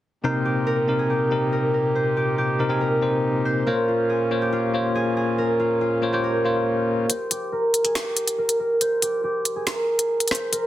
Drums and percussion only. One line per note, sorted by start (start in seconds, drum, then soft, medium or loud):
7.10 closed hi-hat medium
7.31 closed hi-hat medium
7.74 closed hi-hat medium
7.85 closed hi-hat medium
7.95 finger snap medium
7.95 snare loud
7.95 closed hi-hat medium
8.17 closed hi-hat medium
8.28 closed hi-hat medium
8.49 closed hi-hat medium
8.81 closed hi-hat medium
9.02 closed hi-hat medium
9.45 closed hi-hat medium
9.67 finger snap medium
9.67 snare loud
9.67 closed hi-hat medium
9.99 closed hi-hat medium
10.20 closed hi-hat medium
10.28 cross-stick medium
10.28 snare medium
10.28 closed hi-hat medium
10.35 closed hi-hat medium
10.53 closed hi-hat medium